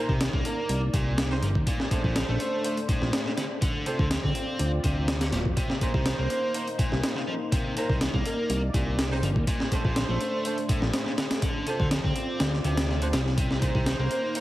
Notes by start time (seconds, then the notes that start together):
Already playing: A#3 D#4 A#4 C5 D5
0.09 C2 C3, kick
0.20 D#3, snare, closed hi-hat
0.33 C2 A#3, kick
0.45 A#4, closed hi-hat
0.69 C2, closed hi-hat
0.94 C2 A#2, kick, closed hi-hat
1.18 snare, closed hi-hat
1.31 C3 D#4 A#4 C5, snare
1.42 G1 F3, closed hi-hat
1.55 D#2, kick
1.67 A#2 A3 D4 C5, kick, closed hi-hat
1.80 snare
1.91 A2 D4 A4 C5, kick, closed hi-hat
2.04 A#1 A#2, kick
2.16 D3, snare, closed hi-hat
2.28 A#1 A3
2.40 C5, closed hi-hat
2.65 D4 A4 C5, closed hi-hat
2.77 closed hi-hat
2.89 A2, kick, closed hi-hat
3.02 A#1, snare
3.13 snare, closed hi-hat
3.26 A#2, snare
3.37 D3, snare, closed hi-hat
3.62 D3 C4 F4 D5, kick, closed hi-hat
3.86 C3 D4 F4 A4 C5, closed hi-hat
3.99 D2 D3 A4, kick
4.11 F3, snare, closed hi-hat
4.23 D2 C4, kick
4.35 closed hi-hat
4.59 D2, closed hi-hat
4.84 D2 C3, kick, closed hi-hat
5.08 snare, closed hi-hat
5.21 D3, snare, closed hi-hat
5.32 D1 G3, snare, closed hi-hat
5.45 F2, kick
5.57 C3 A#3 D#4 C5, kick, closed hi-hat
5.70 snare
5.81 A#2 D#4 A#4 C5, kick, closed hi-hat
5.94 C2 C3, kick
6.06 D#3, snare, closed hi-hat
6.18 C2 A#3
6.30 C5, closed hi-hat
6.54 D#4 A#4 C5, closed hi-hat
6.67 closed hi-hat
6.79 A#2, kick, closed hi-hat
6.92 C2, snare
7.04 snare, closed hi-hat
7.16 C3, snare
7.27 F3
7.52 C3 D5, kick, closed hi-hat
7.76 A#2 D#4 A#4 C5, closed hi-hat
7.89 C2 C3, kick
8.01 D#3, snare, closed hi-hat
8.14 C2 A#3, kick
8.25 A#4, closed hi-hat
8.50 C2, closed hi-hat
8.74 C2 A#2, kick, closed hi-hat
8.99 snare, closed hi-hat
9.11 C3 D#4 A#4 C5, snare
9.23 G1 F3, closed hi-hat
9.36 D#2, kick
9.47 A#2 A3 D4 C5, kick, closed hi-hat
9.60 snare
9.72 A2 D4 A4 C5, kick, closed hi-hat
9.85 A#1 A#2, kick
9.96 D3, snare, closed hi-hat
10.09 A#1 A3
10.21 C5, closed hi-hat
10.45 D4 A4 C5, closed hi-hat
10.58 closed hi-hat
10.69 A2, kick, closed hi-hat
10.82 A#1, snare
10.94 snare, closed hi-hat
11.06 A#2, snare
11.18 D3, snare, closed hi-hat
11.31 snare, closed hi-hat
11.42 D3 C4 F4 D5, kick, closed hi-hat
11.67 C3 D4 F4 A4 C5, closed hi-hat
11.79 D2 D3 A4, kick
11.91 F3, snare, closed hi-hat
12.04 D2 C4, kick
12.16 closed hi-hat
12.40 D2, snare, closed hi-hat
12.53 snare
12.64 D2 C3, closed hi-hat
12.77 snare, closed hi-hat
12.89 snare
13.02 D3 D4 F4 C5, closed hi-hat
13.13 C2 G3, snare, closed hi-hat
13.26 snare
13.38 C3 A#3 D#4 C5, kick, closed hi-hat
13.51 snare
13.62 A#2 D#4 A#4 C5, kick, closed hi-hat
13.75 C2 C3, kick
13.86 D#3, snare, closed hi-hat
13.99 C2 A#3
14.11 C5, closed hi-hat
14.35 D#4 A#4 C5, closed hi-hat